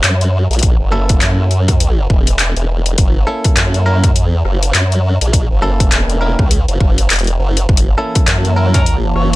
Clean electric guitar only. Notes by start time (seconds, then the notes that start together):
0.92 A#3 C#4 E4 A4
3.27 A#3 C#4 E4 A4
3.86 A#3 C#4 E4 A#4
5.62 A#3 C#4 E4 A4
6.21 A#3 C#4 E4 A#4
7.98 A#3 C#4 E4 A4
8.56 A#3 C#4 E4 A#4